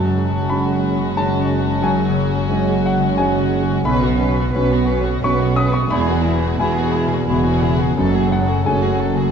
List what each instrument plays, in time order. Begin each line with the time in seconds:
Already playing: double bass section F#1, grand piano F#2 A5, harp F#2 F#4, cello section F#2, viola section G#3, violin section C#4 F#4
0.04 harp C#3
0.27 harp F#4
0.49 grand piano G#3 C#4 F#4 B5
0.73 harp F#4
0.94 harp C#3
1.17 harp D#3, grand piano G#3 C#4 F#4 A5
1.40 harp C#3
1.63 harp F#4
1.82 grand piano F#2 G#5, harp F#2
2.08 harp C#3
2.30 harp F#4
2.50 grand piano G#3 C#4 F#4, harp G#4
2.74 harp F#4
2.86 grand piano F#5
2.96 harp C#3
3.17 harp D#3, grand piano G#3 C#4 F#4 G#5
3.40 harp C#3
3.62 harp F#4
3.85 double bass section B1, grand piano B1 B5, harp B2, cello section B2, violin section C#4 B4, viola section C#4
4.02 violin section B3 F#4, viola section B3
4.09 harp F#3
4.19 violin section C#4 B4, viola section C#4
4.31 harp F#4
4.37 violin section B3 F#4, viola section B3
4.52 double bass section B1, cello section B2, grand piano B3 C#4, violin section C#4 B4, viola section C#4, harp B4
4.56 grand piano F#4
4.70 violin section B3 F#4, viola section B3
4.78 harp F#4
4.86 violin section C#4 B4
4.91 viola section C#4
5.00 harp F#3, violin section B3 F#4
5.06 viola section B3
5.21 double bass section B1, cello section B2, harp G#3, grand piano B3 C#6, violin section C#4 B4, viola section C#4
5.25 grand piano C#4 F#4
5.37 violin section B3 F#4
5.43 harp F#3, viola section B3
5.55 violin section C#4 B4, grand piano D#6
5.60 viola section C#4
5.67 harp F#4
5.71 violin section B3 F#4, grand piano C#6
5.76 viola section B3
5.90 double bass section E1, harp E2, grand piano E2 B5, cello section E2, viola section G#3, violin section E4 G#4
6.06 viola section B3, violin section F#4 G#4
6.13 harp B2
6.24 viola section G#3, violin section E4 G#4
6.36 harp F#4
6.42 viola section B3, violin section F#4 G#4
6.59 double bass section E1, cello section E2, viola section G#3, grand piano B3 E4 F#4 G#5, violin section E4 G#4, harp B4
6.75 viola section B3, violin section F#4 G#4
6.84 harp F#4
6.92 viola section G#3, violin section E4 G#4
7.06 harp B2
7.10 viola section B3, violin section F#4 G#4
7.27 double bass section E1, cello section E2, harp C#3, viola section G#3, grand piano B3 E4 F#4, violin section E4 G#4
7.44 viola section B3, violin section F#4
7.48 harp B2, violin section G#4
7.61 viola section G#3, violin section E4 G#4
7.74 harp F#4, violin section F#4
7.80 viola section B3, violin section G#4
7.97 double bass section F#1, cello section F#2, harp F#2, grand piano F#2, viola section G#3, violin section C#4 A4
8.14 viola section A3, violin section F#4 G#4
8.20 harp C#3
8.31 viola section G#3, violin section C#4 A4, grand piano F#5
8.43 harp F#4, violin section F#4
8.48 viola section A3, violin section G#4
8.64 double bass section F#1, cello section F#2, viola section G#3, grand piano A3 C#4 F#4 G#5, violin section C#4 A4, harp G#5
8.83 viola section A3, violin section F#4 G#4
8.90 harp F#4
8.99 viola section G#3, violin section C#4 A4
9.14 harp C#3, violin section F#4 G#4
9.22 viola section A3